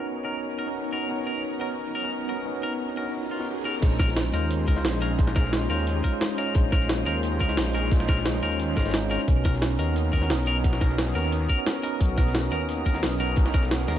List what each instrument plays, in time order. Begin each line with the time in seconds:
Already playing: tine electric piano B3 C#4 D#4 F#4 A#4 B4, ambient pad B3 D#4 C#5 A#5
0.23 tine electric piano B3 C#4 D#4 F#4 A#4, clean electric guitar A#4
0.59 clean electric guitar A#4
0.67 tine electric piano B3 C#4 D#4 F#4 A#4
0.92 tine electric piano B3 C#4 D#4 F#4 B4, clean electric guitar A#4
1.08 tine electric piano B3 C#4 D#4 F#4 A#4, riser
1.27 clean electric guitar A#4
1.60 tine electric piano B3 C#4 D#4 F#4 A#4, clean electric guitar A#4
1.95 clean electric guitar A#4
2.03 tine electric piano B3 C#4 D#4 F#4 A#4
2.28 tine electric piano B3 C#4 D#4 F#4 B4, clean electric guitar A#4
2.45 tine electric piano B3 C#4 D#4 F#4 A#4
2.63 clean electric guitar A#4
2.96 tine electric piano B3 C#4 D#4 F#4 A#4, clean electric guitar A#4
3.31 clean electric guitar F4
3.39 tine electric piano B3 C#4 D#4 F#4 A#4
3.65 tine electric piano B3 C#4 D#4 F#4 B4, clean electric guitar A#4
3.81 detuned saw bass A#1, tine electric piano G#3 C#4 D#4 F4 C5, ambient pad C#4 G#4 D#5 C6, kick, closed hi-hat, crash
3.99 clean electric guitar A#4, kick, snare, closed hi-hat
4.09 snare
4.16 snare, closed hi-hat
4.25 closed hi-hat
4.32 detuned saw bass D#2, tine electric piano G#3 C#4 D#4 F4 C5, clean electric guitar A#4, closed hi-hat
4.51 closed hi-hat
4.67 detuned saw bass C#2, clean electric guitar A#4, kick, closed hi-hat
4.76 tine electric piano G#3 C#4 D#4 F4 C5, snare
4.85 detuned saw bass A#1, snare, closed hi-hat, open hi-hat
5.01 tine electric piano G#3 C#4 D#4 F4 C#5, clean electric guitar A#4, snare, closed hi-hat
5.18 tine electric piano G#3 C#4 D#4 F4 C5, kick, closed hi-hat
5.27 snare
5.35 clean electric guitar A#4, kick, snare, closed hi-hat
5.44 snare
5.53 snare, closed hi-hat
5.61 snare, closed hi-hat
5.69 detuned saw bass D#2, tine electric piano G#3 C#4 D#4 F4 C5, clean electric guitar A#4, closed hi-hat, open hi-hat
5.78 closed hi-hat
5.87 closed hi-hat
6.04 clean electric guitar A#4, kick, closed hi-hat
6.12 tine electric piano G#3 C#4 D#4 F4 C5
6.21 snare, closed hi-hat
6.37 tine electric piano G#3 C#4 D#4 F4 C#5, clean electric guitar A#4, closed hi-hat
6.54 detuned saw bass A#1, tine electric piano G#3 C#4 D#4 F4 C5, kick, closed hi-hat
6.72 clean electric guitar A#4, kick, snare, closed hi-hat
6.81 snare
6.89 snare, closed hi-hat
6.98 closed hi-hat
7.05 detuned saw bass D#2, tine electric piano G#3 C#4 D#4 F4 C5, clean electric guitar A#4, closed hi-hat
7.23 closed hi-hat
7.40 detuned saw bass C#2, clean electric guitar A#4, kick, closed hi-hat
7.48 tine electric piano G#3 C#4 D#4 F4 C5, snare
7.57 detuned saw bass A#1, snare, closed hi-hat, open hi-hat
7.74 tine electric piano G#3 C#4 D#4 F4 C#5, clean electric guitar A#4, snare, closed hi-hat
7.90 tine electric piano G#3 C#4 D#4 F4 C5, kick, closed hi-hat
8.00 snare
8.08 clean electric guitar A#4, kick, snare, closed hi-hat
8.17 snare, closed hi-hat
8.25 snare, closed hi-hat
8.34 snare, closed hi-hat
8.41 detuned saw bass D#2, tine electric piano G#3 C#4 D#4 F4 C5, clean electric guitar A#4, closed hi-hat, open hi-hat
8.51 closed hi-hat
8.60 closed hi-hat
8.76 detuned saw bass G#1, clean electric guitar A#4, kick, snare, closed hi-hat
8.85 tine electric piano G#3 C#4 D#4 F4 C5, snare, closed hi-hat
8.90 snare, closed hi-hat
8.94 snare, closed hi-hat
9.10 tine electric piano G#3 C#4 D#4 F4 C#5, clean electric guitar A#4, closed hi-hat
9.19 snare
9.27 detuned saw bass B1, tine electric piano B3 C#4 D#4 F#4 A#4, ambient pad A#5 D#6, kick, closed hi-hat
9.45 clean electric guitar A#4, kick, snare, closed hi-hat
9.53 snare
9.62 snare, closed hi-hat
9.71 closed hi-hat
9.78 detuned saw bass D#2, tine electric piano B3 C#4 D#4 F#4 A#4, clean electric guitar A#4, closed hi-hat
9.96 closed hi-hat
10.13 detuned saw bass D#2, clean electric guitar A#4, kick, closed hi-hat
10.21 tine electric piano B3 C#4 D#4 F#4 A#4, snare
10.30 detuned saw bass B1, snare, closed hi-hat, open hi-hat
10.47 tine electric piano B3 C#4 D#4 F#4 B4, clean electric guitar A#4, snare, closed hi-hat
10.63 tine electric piano B3 C#4 D#4 F#4 A#4, kick, closed hi-hat
10.72 snare
10.81 clean electric guitar A#4, kick, snare, closed hi-hat
10.89 snare
10.98 snare, closed hi-hat
11.06 snare, closed hi-hat
11.14 detuned saw bass D#2, tine electric piano B3 C#4 D#4 F#4 A#4, clean electric guitar A#4, closed hi-hat, open hi-hat
11.24 closed hi-hat
11.32 closed hi-hat
11.49 clean electric guitar A#4, kick, closed hi-hat
11.57 tine electric piano B3 C#4 D#4 F#4 A#4
11.67 snare, closed hi-hat
11.83 tine electric piano B3 C#4 D#4 F#4 B4, clean electric guitar A#4, closed hi-hat
11.99 detuned saw bass B1, tine electric piano B3 C#4 D#4 F#4 A#4, kick, closed hi-hat
12.18 clean electric guitar A#4, kick, snare, closed hi-hat
12.27 snare
12.34 snare, closed hi-hat
12.43 closed hi-hat
12.50 detuned saw bass D#2, tine electric piano B3 C#4 D#4 F#4 A#4, clean electric guitar A#4, closed hi-hat
12.69 closed hi-hat
12.85 detuned saw bass D#2, clean electric guitar A#4, kick, closed hi-hat
12.94 tine electric piano B3 C#4 D#4 F#4 A#4, snare
13.03 detuned saw bass B1, snare, closed hi-hat, open hi-hat
13.19 tine electric piano B3 C#4 D#4 F#4 B4, clean electric guitar A#4, snare, closed hi-hat
13.36 tine electric piano B3 C#4 D#4 F#4 A#4, kick, closed hi-hat
13.46 snare
13.54 clean electric guitar A#4, kick, snare, closed hi-hat
13.63 snare, closed hi-hat
13.71 snare, closed hi-hat
13.80 snare, closed hi-hat
13.87 detuned saw bass D#2, tine electric piano B3 C#4 D#4 F#4 A#4, clean electric guitar A#4, snare, closed hi-hat, open hi-hat